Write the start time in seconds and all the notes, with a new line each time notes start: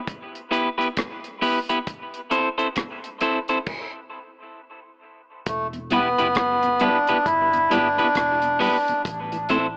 0.07 kick, closed hi-hat
0.35 closed hi-hat
0.51 B3 E4 G4 B4, closed hi-hat
0.78 B3 E4 G4 B4, closed hi-hat
0.97 kick, cross-stick, closed hi-hat
1.24 closed hi-hat
1.42 B3 E4 G4 B4, open hi-hat
1.69 B3 E4 G4 B4, closed hi-hat
1.87 kick, closed hi-hat
2.14 closed hi-hat
2.31 C4 E4 A4 C5, closed hi-hat
2.58 C4 E4 A4 C5, closed hi-hat
2.76 kick, cross-stick, closed hi-hat
3.04 closed hi-hat
3.21 C4 E4 A4 C5, closed hi-hat
3.48 C4 E4 A4 C5, closed hi-hat
3.66 kick, crash
5.46 E1 A3, kick, closed hi-hat
5.73 E2 B2, closed hi-hat
5.90 G3 B3 E4 G4 B4, closed hi-hat
6.18 F#1 E2 B2 B3 E4 G4 B4, closed hi-hat
6.35 kick, cross-stick, closed hi-hat
6.63 E2 B2, closed hi-hat
6.80 G3 B3 D4 E4 G4 B4, closed hi-hat
7.07 E2 B2 B3 E4 G4 B4, closed hi-hat
7.26 G1 E4, kick, closed hi-hat
7.53 E2 B2, closed hi-hat
7.70 G1 G3 B3 D4 E4 G4 B4, closed hi-hat
7.97 E2 B2 B3 E4 G4 B4, closed hi-hat
8.15 E1, kick, cross-stick, closed hi-hat
8.42 E2 B2, closed hi-hat
8.60 G3 B3 D4 E4 G4 B4, open hi-hat
8.88 E2 B2, closed hi-hat
9.05 A1, kick, closed hi-hat
9.32 A2 E3, closed hi-hat
9.49 A3 C4 E4 A4 C5, closed hi-hat